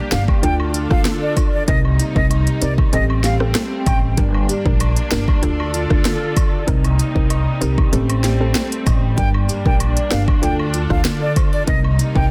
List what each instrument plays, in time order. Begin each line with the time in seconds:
Already playing: nylon-string guitar G3 G4 D5, string section A#3 D4 G4
0.11 upright bass G1, synth pluck A#3 D4 G4, flute F5, cross-stick, snare, closed hi-hat, cabasa
0.28 kick, high woodblock
0.43 upright bass D2, nylon-string guitar D3, string section D3 D4 F4 A4, synth pluck D4 F4 A4, flute G5, closed hi-hat
0.60 high woodblock
0.74 nylon-string guitar F4, closed hi-hat, cabasa
0.90 upright bass D2, synth pluck D4 F4 A4, flute F5, kick, cross-stick
1.05 nylon-string guitar A4, cross-stick, snare, closed hi-hat
1.22 flute D5
1.36 synth pluck D4 F4 A4, nylon-string guitar D5, kick, closed hi-hat, cabasa, high woodblock
1.53 flute D5
1.67 upright bass C2, nylon-string guitar C3 D#5, string section C3 G3 A#3 D#4, synth pluck C4 D#4 A#4, flute D#5, kick, closed hi-hat
1.85 high woodblock
1.99 nylon-string guitar D#4, closed hi-hat, cabasa
2.15 upright bass C2, synth pluck C4 D#4 A#4, flute D#5, kick
2.30 nylon-string guitar D#5, closed hi-hat, high woodblock
2.47 closed hi-hat
2.61 upright bass C2, synth pluck C4 D#4 A#4, nylon-string guitar G4, flute D5, closed hi-hat, cabasa
2.78 kick, high woodblock
2.93 upright bass A1, nylon-string guitar A3, string section A3 C4, synth pluck C4 G4 A4, flute D#5, closed hi-hat
3.10 high woodblock
3.24 nylon-string guitar G4, flute F5, snare, closed hi-hat, cabasa
3.40 synth pluck C4 G4 A4, cross-stick
3.55 nylon-string guitar A4, cross-stick, snare, closed hi-hat
3.86 upright bass A1, nylon-string guitar D#5, flute G5, kick, closed hi-hat, cabasa, high woodblock
4.17 upright bass G1, nylon-string guitar G3 D5, string section A#3 D4, synth pluck D4 G4 A#4, kick, closed hi-hat
4.34 high woodblock
4.49 nylon-string guitar G4, closed hi-hat, cabasa
4.65 upright bass A#1, synth pluck D4 G4 A#4, kick
4.80 nylon-string guitar D5, closed hi-hat, high woodblock
4.96 closed hi-hat
5.11 upright bass G1, synth pluck D4 G4 A#4, nylon-string guitar A#4, cross-stick, snare, closed hi-hat, cabasa
5.28 kick, high woodblock
5.42 upright bass D2, string section D3 F4 A4, nylon-string guitar D3, synth pluck D4 F4 A4, closed hi-hat
5.60 high woodblock
5.74 nylon-string guitar F4, closed hi-hat, cabasa
5.90 upright bass D2, synth pluck D4 F4 A4, kick, cross-stick
6.05 nylon-string guitar A4, cross-stick, snare, closed hi-hat
6.36 nylon-string guitar D5, kick, closed hi-hat, cabasa, high woodblock
6.67 upright bass C2, string section C3 G3 A#3 D#4, nylon-string guitar C3 D#5, synth pluck C4 D#4 A#4, kick, closed hi-hat
6.84 closed hi-hat, high woodblock
6.99 nylon-string guitar D#4, closed hi-hat, cabasa
7.15 upright bass C2, synth pluck C4 D#4 A#4, kick
7.30 nylon-string guitar D#5, closed hi-hat, high woodblock
7.61 upright bass C2, synth pluck C4 D#4 A#4, nylon-string guitar G4, closed hi-hat, cabasa
7.78 kick, high woodblock
7.92 upright bass A1, string section A3 C4, nylon-string guitar A3, synth pluck C4 G4 A4, closed hi-hat
8.10 closed hi-hat, high woodblock
8.24 nylon-string guitar G4, snare, closed hi-hat, cabasa
8.40 synth pluck C4 G4 A4
8.55 nylon-string guitar A4, cross-stick, snare, closed hi-hat
8.72 closed hi-hat
8.86 upright bass A1, nylon-string guitar D#5, kick, closed hi-hat, cabasa, high woodblock
9.17 upright bass G1, nylon-string guitar G3 D5, string section A#3 D4, synth pluck D4 G4 A#4, flute G5, kick, closed hi-hat
9.34 high woodblock
9.49 nylon-string guitar G4, closed hi-hat, cabasa
9.65 upright bass A#1, synth pluck D4 G4 A#4, flute G5, kick
9.80 nylon-string guitar D5, closed hi-hat, high woodblock
9.97 closed hi-hat
10.11 upright bass G1, synth pluck D4 G4 A#4, flute F5, cross-stick, snare, closed hi-hat, cabasa
10.28 kick, high woodblock
10.42 upright bass D2, nylon-string guitar D3, string section D3 F4 A4, synth pluck D4 F4 A4, flute G5, closed hi-hat
10.59 high woodblock
10.74 nylon-string guitar F4, closed hi-hat, cabasa
10.90 upright bass D2, synth pluck D4 F4 A4, flute F5, kick, cross-stick
11.05 nylon-string guitar A4, cross-stick, snare, closed hi-hat
11.22 flute D5
11.36 nylon-string guitar C5, kick, closed hi-hat, cabasa, high woodblock
11.53 flute D5, nylon-string guitar D5
11.67 upright bass C2, nylon-string guitar C3 D#5, string section C3 G3 A#3 D#4, synth pluck C4 D#4 A#4, flute D#5, kick, closed hi-hat
11.84 high woodblock
11.99 nylon-string guitar D#4, closed hi-hat, cabasa
12.15 upright bass C2, synth pluck C4 D#4 A#4, flute G5, kick